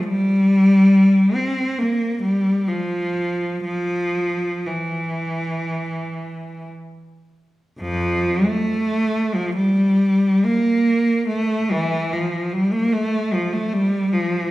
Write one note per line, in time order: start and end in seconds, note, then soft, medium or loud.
0.06 1.37 G3 medium
1.35 1.78 C4 medium
1.78 2.22 A#3 medium
2.22 2.66 G3 medium
2.68 3.63 F3 medium
3.64 4.64 F3 medium
4.67 6.70 E3 soft
7.80 8.44 F2 medium
7.80 8.45 F3 medium
8.47 9.35 A3 medium
9.35 9.57 F3 medium
9.55 10.42 G3 medium
10.45 11.28 A#3 medium
11.28 11.69 A3 medium
11.71 12.12 E3 medium
12.12 12.52 F3 medium
12.53 12.72 G3 medium
12.73 12.92 A#3 medium
12.93 13.32 A3 medium
13.33 13.52 F3 medium
13.53 13.72 A3 medium
13.73 14.14 G3 medium
14.13 14.51 F3 medium